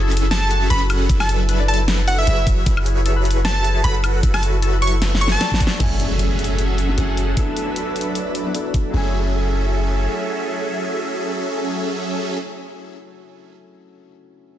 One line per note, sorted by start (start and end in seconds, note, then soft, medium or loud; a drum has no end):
0.00 0.68 F#1 loud
0.00 0.68 F#3 medium
0.00 0.68 C#4 medium
0.00 0.22 E4 loud
0.00 0.50 F#4 medium
0.00 0.68 G#4 medium
0.00 0.68 A4 medium
0.00 0.11 A4 loud
0.00 1.38 B4 loud
0.00 0.68 E5 loud
0.11 0.37 A4 medium
0.11 closed hi-hat soft
0.17 closed hi-hat medium
0.22 0.89 E4 medium
0.31 1.35 G#4 medium
0.31 0.68 A5 medium
0.31 snare loud
0.31 closed hi-hat medium
0.51 2.94 F#4 medium
0.51 closed hi-hat medium
0.70 1.08 F#1 loud
0.70 1.07 F#3 medium
0.70 1.07 C#4 medium
0.70 1.07 G#4 medium
0.70 1.07 A4 medium
0.70 1.07 F#5 loud
0.70 0.80 B5 medium
0.70 closed hi-hat medium
0.90 1.09 E4 medium
0.90 closed hi-hat medium
0.90 high woodblock medium
1.09 2.25 F#1 medium
1.09 2.25 F#3 medium
1.09 2.25 D4 medium
1.09 1.79 E4 loud
1.09 2.25 A4 medium
1.09 2.25 B4 medium
1.09 kick loud
1.09 closed hi-hat medium
1.20 1.29 A5 medium
1.20 snare soft
1.20 high woodblock medium
1.29 2.07 A4 medium
1.29 closed hi-hat medium
1.49 1.88 B4 loud
1.49 closed hi-hat medium
1.59 1.68 D5 loud
1.68 3.53 D5 medium
1.68 1.79 A5 medium
1.68 closed hi-hat medium
1.74 closed hi-hat medium
1.79 2.46 E4 medium
1.88 3.16 B4 medium
1.88 snare loud
1.88 closed hi-hat medium
2.08 2.92 A4 medium
2.08 2.16 F#5 medium
2.08 closed hi-hat medium
2.18 2.47 E5 loud
2.27 2.65 F#1 loud
2.27 2.64 F#3 medium
2.27 2.64 F#4 medium
2.27 2.64 G#4 medium
2.27 2.64 B4 medium
2.27 2.64 C#5 medium
2.27 2.64 E5 medium
2.27 closed hi-hat medium
2.47 2.66 E4 medium
2.47 kick loud
2.47 closed hi-hat medium
2.66 3.82 F#1 loud
2.66 3.82 F#3 medium
2.66 3.35 E4 loud
2.66 3.82 F#4 medium
2.66 3.82 G#4 medium
2.66 3.82 B4 medium
2.66 3.82 C#5 medium
2.66 3.82 E5 medium
2.66 kick loud
2.66 closed hi-hat medium
2.77 high woodblock medium
2.86 3.12 G#4 medium
2.86 closed hi-hat medium
3.06 3.44 A4 loud
3.06 closed hi-hat medium
3.16 3.25 B4 loud
3.25 4.73 B4 medium
3.25 closed hi-hat soft
3.31 closed hi-hat medium
3.36 4.03 E4 medium
3.45 3.82 A5 loud
3.45 snare loud
3.45 closed hi-hat medium
3.64 4.68 G#4 medium
3.64 closed hi-hat medium
3.84 4.21 F#1 loud
3.84 4.21 F#3 medium
3.84 4.21 F#4 medium
3.84 4.21 A4 medium
3.84 4.21 F#5 loud
3.84 3.94 B5 medium
3.84 closed hi-hat medium
4.04 4.23 E4 medium
4.04 closed hi-hat medium
4.04 high woodblock medium
4.23 5.37 F#1 loud
4.23 5.39 F#3 medium
4.23 4.92 E4 loud
4.23 5.39 F#4 medium
4.23 5.39 A4 medium
4.23 5.39 E5 loud
4.23 kick loud
4.23 closed hi-hat medium
4.34 4.42 A5 medium
4.34 snare soft
4.34 high woodblock medium
4.43 5.32 F#4 medium
4.43 closed hi-hat medium
4.62 5.01 A4 loud
4.62 closed hi-hat medium
4.73 4.82 B4 loud
4.82 5.21 B4 medium
4.82 4.92 C#6 medium
4.82 closed hi-hat medium
4.87 closed hi-hat medium
4.93 7.54 E4 medium
5.02 7.21 A4 medium
5.02 snare medium
5.02 closed hi-hat medium
5.15 snare medium
5.21 7.26 B4 medium
5.21 5.30 C#6 medium
5.21 closed hi-hat medium
5.28 snare medium
5.32 5.60 F#4 medium
5.32 5.60 A5 loud
5.41 7.26 D5 loud
5.41 snare loud
5.41 closed hi-hat medium
5.52 kick medium
5.52 snare loud
5.60 8.04 F#4 loud
5.60 kick loud
5.60 closed hi-hat medium
5.67 snare loud
5.78 6.96 F#1 medium
5.78 6.85 F#3 medium
5.78 6.96 F#3 medium
5.78 6.86 A3 medium
5.78 8.91 A3 medium
5.78 6.86 C#4 medium
5.78 6.96 C#4 medium
5.78 6.87 E4 medium
5.78 6.96 G#4 medium
5.78 6.96 A4 medium
5.78 6.96 E5 medium
5.78 7.35 F#5 medium
5.78 7.35 G#5 medium
5.78 6.87 G#5 loud
5.78 8.91 E6 medium
5.78 kick loud
5.78 closed hi-hat medium
5.78 crash medium
5.78 impact medium
6.00 closed hi-hat medium
6.19 closed hi-hat medium
6.39 closed hi-hat soft
6.44 closed hi-hat medium
6.59 closed hi-hat medium
6.78 closed hi-hat medium
6.88 6.95 F#3 medium
6.88 6.95 A3 medium
6.88 6.96 C#4 medium
6.88 6.96 E4 medium
6.88 6.96 A4 medium
6.97 7.35 F#1 loud
6.97 7.34 F#3 medium
6.97 7.35 F#3 medium
6.97 7.35 A3 medium
6.97 7.35 C#4 medium
6.97 7.35 E4 medium
6.97 7.35 G#4 medium
6.97 7.35 A4 medium
6.97 7.35 F#5 loud
6.97 7.35 G#5 medium
6.97 closed hi-hat medium
7.17 closed hi-hat medium
7.35 8.42 F#3 medium
7.35 8.52 F#3 medium
7.35 8.92 F#3 medium
7.35 8.43 B3 medium
7.35 8.52 D4 medium
7.35 8.43 D4 medium
7.35 8.44 E4 medium
7.35 8.52 A4 medium
7.35 8.52 B4 medium
7.35 8.92 D5 medium
7.35 8.52 E5 medium
7.35 8.92 B5 medium
7.35 kick loud
7.35 closed hi-hat medium
7.39 8.44 A4 loud
7.57 closed hi-hat medium
7.76 closed hi-hat medium
7.96 closed hi-hat medium
8.01 closed hi-hat medium
8.15 closed hi-hat medium
8.35 closed hi-hat medium
8.45 8.52 F#3 medium
8.45 8.52 B3 medium
8.45 8.52 D4 medium
8.45 8.53 E4 medium
8.45 8.53 B4 medium
8.54 8.89 F#3 medium
8.54 8.92 F#3 medium
8.54 8.91 B3 medium
8.54 8.92 D4 medium
8.54 8.92 E4 medium
8.54 8.92 A4 medium
8.54 8.92 B4 medium
8.54 8.92 D5 medium
8.54 closed hi-hat medium
8.74 kick loud
8.74 closed hi-hat medium
8.91 10.07 F#1 loud
8.91 12.35 F#3 medium
8.91 12.38 F#3 medium
8.91 12.36 A3 medium
8.91 12.38 A3 medium
8.91 12.38 C#4 medium
8.91 12.38 E4 medium
8.91 12.38 G#4 medium
8.91 12.38 A4 medium
8.91 12.38 E5 medium
8.91 12.38 G#5 medium
8.95 12.39 E4 medium
8.95 12.41 G#5 medium